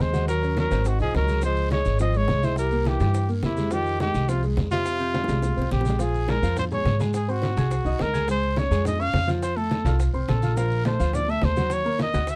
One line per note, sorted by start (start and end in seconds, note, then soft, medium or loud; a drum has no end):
0.00 0.65 D#2 medium
0.00 0.28 G#3 medium
0.00 0.28 C5 medium
0.00 high bongo medium
0.00 low bongo medium
0.00 high conga medium
0.00 short guiro medium
0.00 maracas soft
0.13 0.37 F#4 medium
0.13 0.37 F#5 medium
0.13 high conga medium
0.13 short guiro medium
0.13 maracas medium
0.28 0.55 F#3 medium
0.28 0.55 A#4 medium
0.28 high bongo medium
0.28 high conga soft
0.28 maracas medium
0.42 0.66 C#4 medium
0.42 0.66 C#5 medium
0.42 high bongo soft
0.42 high conga soft
0.42 maracas soft
0.57 0.89 F#3 medium
0.57 0.89 A#4 medium
0.57 high bongo medium
0.57 high conga medium
0.57 short guiro medium
0.57 maracas soft
0.71 0.98 G#1 medium
0.71 0.94 C4 medium
0.71 0.95 C5 medium
0.71 high bongo soft
0.71 high conga medium
0.71 short guiro medium
0.71 maracas medium
0.85 1.01 D#3 medium
0.85 1.01 F#4 medium
0.85 high bongo medium
0.85 high conga soft
0.85 maracas medium
1.00 1.13 C2 medium
1.00 1.14 F3 medium
1.00 1.23 D#4 medium
1.00 1.14 G#4 medium
1.00 1.23 D#5 medium
1.00 high bongo soft
1.00 high conga soft
1.00 maracas soft
1.14 1.80 C#2 medium
1.14 1.42 F#3 medium
1.14 1.42 A#4 medium
1.14 high bongo medium
1.14 low bongo medium
1.14 high conga medium
1.14 short guiro medium
1.14 maracas soft
1.28 1.40 G#3 medium
1.28 1.40 G#4 medium
1.28 high conga medium
1.28 short guiro medium
1.28 maracas medium
1.42 1.66 F3 medium
1.42 1.70 G#3 medium
1.42 1.67 F4 medium
1.42 1.70 C5 loud
1.42 high bongo medium
1.42 high conga soft
1.42 long guiro medium
1.42 maracas medium
1.56 high conga soft
1.56 maracas soft
1.71 1.95 G#3 medium
1.71 1.99 G#3 medium
1.71 1.95 G#4 medium
1.71 1.98 C#5 medium
1.71 high bongo medium
1.71 high conga medium
1.71 short guiro medium
1.71 maracas soft
1.85 2.25 G#1 medium
1.85 high conga soft
1.85 short guiro medium
1.85 maracas medium
1.99 2.12 F3 medium
1.99 2.18 C4 medium
1.99 2.12 F4 medium
1.99 2.18 D#5 loud
1.99 high bongo medium
1.99 high conga soft
1.99 long guiro medium
1.99 maracas medium
2.14 2.38 G#3 medium
2.14 2.45 G#3 medium
2.14 2.38 G#4 medium
2.14 2.46 C#5 loud
2.14 high conga soft
2.14 maracas soft
2.28 2.95 C2 medium
2.28 high bongo medium
2.28 low bongo medium
2.28 high conga medium
2.28 short guiro medium
2.28 maracas soft
2.43 2.58 G#3 medium
2.43 2.66 E4 medium
2.43 2.58 C5 medium
2.43 2.66 E5 medium
2.43 high conga medium
2.43 short guiro medium
2.43 maracas medium
2.56 2.88 G3 medium
2.56 2.89 A#4 medium
2.56 high bongo medium
2.56 high conga soft
2.56 long guiro medium
2.56 maracas medium
2.70 2.95 A#3 medium
2.70 2.95 A#4 medium
2.70 high bongo soft
2.70 high conga soft
2.70 maracas soft
2.85 3.29 E3 medium
2.85 3.29 G4 medium
2.85 high bongo medium
2.85 high conga medium
2.85 short guiro medium
2.85 maracas soft
2.99 3.40 G2 medium
2.99 3.23 G3 medium
2.99 3.23 G4 medium
2.99 high bongo soft
2.99 high conga medium
2.99 short guiro medium
2.99 maracas medium
3.14 high bongo medium
3.14 high conga soft
3.14 long guiro medium
3.14 maracas medium
3.28 3.52 A#3 medium
3.28 3.52 A#4 medium
3.28 high bongo soft
3.28 high conga soft
3.28 maracas soft
3.43 4.09 F2 medium
3.43 3.74 C3 medium
3.43 3.74 E4 medium
3.43 high bongo medium
3.43 low bongo medium
3.43 high conga medium
3.43 short guiro medium
3.43 maracas soft
3.57 3.69 G#3 medium
3.57 3.69 G#4 medium
3.57 high conga medium
3.57 short guiro medium
3.57 maracas medium
3.71 4.00 D#3 medium
3.71 3.95 F3 medium
3.71 3.95 F4 medium
3.71 4.00 G4 medium
3.71 high bongo medium
3.71 high conga soft
3.71 long guiro medium
3.71 maracas medium
3.86 high conga soft
3.86 maracas soft
4.00 4.30 D#3 medium
4.00 4.24 G#3 medium
4.00 4.31 G4 medium
4.00 4.24 G#4 medium
4.00 high bongo medium
4.00 high conga medium
4.00 short guiro medium
4.00 maracas soft
4.14 4.54 C2 medium
4.14 high conga soft
4.14 short guiro medium
4.14 maracas medium
4.29 4.43 C3 medium
4.29 4.41 F3 medium
4.29 4.43 F4 medium
4.29 4.41 F4 medium
4.29 high bongo medium
4.29 high conga soft
4.29 long guiro medium
4.29 maracas medium
4.43 4.67 G#3 medium
4.43 4.67 G#4 medium
4.43 high conga soft
4.43 maracas soft
4.57 5.23 F2 medium
4.57 high bongo medium
4.57 low bongo medium
4.57 high conga medium
4.57 short guiro medium
4.57 maracas soft
4.71 5.68 C3 medium
4.71 5.67 F4 loud
4.71 4.95 F4 medium
4.71 4.95 F5 medium
4.71 high conga medium
4.71 short guiro medium
4.71 maracas medium
4.85 high bongo medium
4.85 high conga soft
4.85 long guiro medium
4.85 maracas medium
4.99 5.23 C4 medium
4.99 5.23 C5 medium
4.99 high bongo soft
4.99 high conga soft
4.99 maracas soft
5.14 high bongo medium
5.14 high conga medium
5.14 short guiro medium
5.14 maracas soft
5.24 5.52 G#3 medium
5.24 5.52 G#4 medium
5.24 high bongo medium
5.28 5.55 C2 medium
5.28 high conga medium
5.28 short guiro medium
5.28 maracas medium
5.42 high bongo medium
5.42 high conga soft
5.42 maracas medium
5.57 5.70 C2 medium
5.57 5.80 C4 medium
5.57 5.81 C5 medium
5.57 high conga soft
5.57 maracas soft
5.62 low bongo medium
5.71 6.38 A#1 medium
5.71 6.03 G4 medium
5.71 low bongo medium
5.71 high conga medium
5.71 short guiro medium
5.71 maracas soft
5.81 low bongo medium
5.85 5.97 G#3 medium
5.85 5.97 G#4 medium
5.85 high conga medium
5.85 short guiro medium
5.85 maracas medium
5.90 low bongo medium
5.99 6.23 F3 medium
5.99 6.23 F4 medium
5.99 6.31 G#4 medium
5.99 6.23 F5 medium
5.99 high bongo medium
5.99 high conga soft
5.99 long guiro medium
5.99 maracas medium
6.14 high conga soft
6.14 maracas soft
6.28 6.40 G#3 medium
6.28 6.40 G#4 medium
6.28 6.58 A#4 medium
6.28 6.41 G#5 medium
6.28 high bongo medium
6.28 high conga loud
6.28 short guiro medium
6.28 maracas soft
6.42 6.82 F2 medium
6.42 6.66 F3 medium
6.42 6.66 F4 medium
6.42 6.66 F5 medium
6.42 high conga soft
6.42 short guiro medium
6.42 maracas medium
6.57 6.65 C5 medium
6.57 high bongo medium
6.57 high conga soft
6.57 low conga medium
6.57 long guiro medium
6.57 maracas medium
6.71 6.95 G#3 medium
6.71 6.95 G#4 medium
6.71 6.99 C#5 medium
6.71 6.95 G#5 medium
6.71 high conga soft
6.71 low conga medium
6.71 maracas soft
6.85 7.51 G#2 medium
6.85 high bongo medium
6.85 low bongo medium
6.85 high conga medium
6.85 short guiro medium
6.85 maracas soft
7.00 7.23 G#3 medium
7.00 7.23 G#4 medium
7.00 7.24 G#5 medium
7.00 high conga medium
7.00 short guiro medium
7.00 maracas medium
7.14 7.32 G#4 medium
7.14 high bongo medium
7.14 high conga soft
7.14 long guiro medium
7.14 maracas medium
7.28 7.52 C4 medium
7.28 8.03 F#4 medium
7.28 7.52 C5 medium
7.28 7.52 C6 medium
7.28 high bongo soft
7.28 high conga soft
7.28 maracas soft
7.42 high bongo medium
7.42 high conga medium
7.42 short guiro medium
7.42 maracas soft
7.57 7.84 C2 medium
7.57 7.81 G#4 medium
7.57 7.81 G#5 medium
7.57 7.81 G#6 medium
7.57 high bongo soft
7.57 high conga medium
7.57 short guiro medium
7.57 maracas medium
7.71 high bongo medium
7.71 high conga soft
7.71 long guiro medium
7.71 maracas medium
7.85 7.98 C2 medium
7.85 8.09 D#4 medium
7.85 8.09 D#5 medium
7.85 8.09 D#6 medium
7.85 high bongo soft
7.85 high conga soft
7.85 maracas soft
7.99 8.66 C#2 medium
7.99 8.29 A#4 loud
7.99 high bongo medium
7.99 low bongo medium
7.99 high conga medium
7.99 short guiro medium
7.99 maracas soft
8.13 8.25 G#4 medium
8.13 8.25 G#5 medium
8.13 8.26 G#6 medium
8.13 high conga medium
8.13 short guiro medium
8.13 maracas medium
8.28 8.51 G#3 medium
8.28 8.51 G#4 medium
8.28 8.60 C5 loud
8.28 8.52 G#5 medium
8.28 high bongo medium
8.28 high conga soft
8.28 maracas medium
8.43 high conga soft
8.43 maracas soft
8.56 8.68 C#4 medium
8.56 8.69 C#5 medium
8.56 8.86 C#5 loud
8.56 8.69 C#6 medium
8.56 high bongo medium
8.56 high conga medium
8.56 short guiro medium
8.56 maracas soft
8.71 9.11 F2 loud
8.71 8.95 G#3 medium
8.71 8.95 G#4 medium
8.71 8.95 G#5 medium
8.71 high conga soft
8.71 short guiro medium
8.71 maracas medium
8.85 9.03 D#5 loud
8.85 high bongo medium
8.85 high conga soft
8.85 low conga medium
8.85 long guiro medium
8.85 maracas medium
8.99 9.23 C#4 medium
8.99 9.23 C#5 medium
8.99 9.29 F5 loud
8.99 9.23 C#6 medium
8.99 high conga soft
8.99 maracas soft
9.14 9.80 F2 medium
9.14 high bongo medium
9.14 low bongo medium
9.14 high conga medium
9.14 short guiro medium
9.14 maracas soft
9.27 9.51 F3 medium
9.27 9.52 F4 medium
9.27 9.52 F5 medium
9.27 high conga medium
9.27 short guiro medium
9.27 maracas medium
9.42 9.58 C5 loud
9.42 high bongo medium
9.42 high conga soft
9.42 long guiro medium
9.42 maracas medium
9.56 9.80 A3 medium
9.56 9.80 A4 medium
9.56 10.01 A4 medium
9.56 9.80 A5 medium
9.56 high bongo soft
9.56 high conga soft
9.56 maracas soft
9.71 high bongo medium
9.71 high conga medium
9.71 short guiro medium
9.71 maracas soft
9.85 10.12 C2 loud
9.85 10.09 F4 medium
9.85 10.09 F5 medium
9.85 10.09 F6 medium
9.85 high bongo soft
9.85 high conga medium
9.85 short guiro medium
9.85 maracas medium
9.99 high bongo medium
9.99 high conga soft
9.99 long guiro medium
9.99 maracas medium
10.13 10.27 C2 medium
10.13 10.37 C4 medium
10.13 10.38 C5 medium
10.13 10.38 C6 medium
10.13 high bongo soft
10.13 high conga soft
10.13 maracas soft
10.28 10.94 A#1 medium
10.28 10.58 A4 medium
10.28 high bongo medium
10.28 low bongo medium
10.28 high conga medium
10.28 short guiro medium
10.28 maracas soft
10.42 10.54 F4 medium
10.42 10.54 F5 medium
10.42 10.55 F6 medium
10.42 high conga medium
10.42 short guiro medium
10.42 maracas medium
10.56 10.80 F3 medium
10.56 10.80 F4 medium
10.56 10.85 A#4 medium
10.56 10.81 F5 medium
10.56 high bongo medium
10.56 high conga soft
10.56 maracas medium
10.71 high conga soft
10.71 maracas soft
10.85 10.97 A3 medium
10.85 10.98 A4 medium
10.85 11.17 C5 medium
10.85 10.97 A5 medium
10.85 high bongo medium
10.85 high conga loud
10.85 short guiro medium
10.85 maracas soft
10.99 11.40 D2 medium
10.99 11.23 F3 medium
10.99 11.23 F4 medium
10.99 11.23 F5 medium
10.99 high conga soft
10.99 short guiro medium
10.99 maracas medium
11.13 11.32 D5 loud
11.13 high bongo medium
11.13 high conga soft
11.13 low conga medium
11.13 long guiro medium
11.13 maracas medium
11.28 11.52 A3 medium
11.28 11.52 A4 medium
11.28 11.46 E5 loud
11.28 11.52 A5 medium
11.28 high conga soft
11.28 maracas soft
11.42 12.09 D#2 medium
11.42 11.75 C5 medium
11.42 high bongo medium
11.42 low bongo medium
11.42 high conga medium
11.42 short guiro medium
11.42 maracas soft
11.56 11.80 F#3 medium
11.56 11.80 F#4 medium
11.56 11.81 F#5 medium
11.56 high conga medium
11.56 short guiro medium
11.56 maracas medium
11.70 12.01 C#5 loud
11.70 high bongo medium
11.70 high conga soft
11.70 long guiro medium
11.70 maracas medium
11.85 12.09 A#3 medium
11.85 12.09 A#4 medium
11.85 12.09 A#5 medium
11.85 high bongo soft
11.85 high conga soft
11.85 maracas soft
11.99 12.31 D#5 loud
11.99 high bongo medium
11.99 high conga medium
11.99 short guiro medium
11.99 maracas soft
12.13 12.36 D2 medium
12.13 12.36 F#4 medium
12.13 12.36 F#5 medium
12.13 12.36 F#6 medium
12.13 high bongo soft
12.13 high conga medium
12.13 short guiro medium
12.13 maracas medium
12.27 12.36 E5 loud
12.27 high bongo medium
12.27 high conga soft
12.27 long guiro medium
12.27 maracas medium